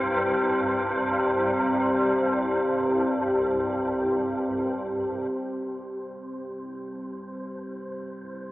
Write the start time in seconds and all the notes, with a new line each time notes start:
Already playing: C2 G2 C4 G4 C5
5.32 C2 G2 C5